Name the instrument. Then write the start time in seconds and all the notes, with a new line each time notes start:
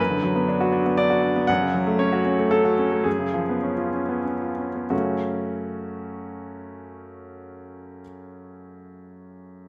grand piano
Already playing: F#2 B4
0.10 D3
0.23 F#3
0.36 B3
0.48 D4
0.61 F#4
0.73 D4
0.86 B3
0.97 D4 D5
1.10 F#4
1.23 D4
1.36 B3
1.47 F#2 F#5
1.61 C#3
1.74 F#3
1.87 A3
1.99 C#4 C#5
2.12 F#4
2.25 C#4
2.39 A3
2.51 C#4 A4
2.65 F#4
2.79 C#4
2.92 A3
3.04 F#2 G#4
3.19 C#3
3.34 F3
3.49 B3
3.63 C#4
3.77 F4
3.93 C#4
4.09 B3
4.25 C#4
4.42 F4
4.59 C#4
4.75 B3
4.90 F#2 C#3 A3 C#4 F#4